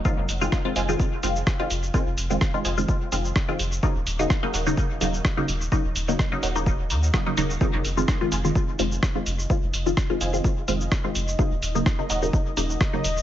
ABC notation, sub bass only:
X:1
M:4/4
L:1/16
Q:"Swing 16ths" 1/4=127
K:Fphr
V:1 name="Sub bass" clef=bass
z F,,, F,,,2 z2 F,,,2 z2 F,,,2 z2 F,,,2 | z F,,, F,,,2 z2 F,,,2 z2 F,,,2 z2 F,,,2 | z E,,, E,,,2 z2 E,,,2 z2 E,,,2 z2 E,,,2 | z E,,, E,,,2 z2 E,,,4 E,,2 z2 E,,,2 |
z F,,, F,,,2 z2 F,,,2 z2 F,,,2 z2 F,,,2 | z F,,, F,,,2 z2 F,,,2 z2 F,,,2 z2 F,,,2 | z E,,, E,,,2 z2 E,,,2 z2 E,,,2 z2 E,,,2 |]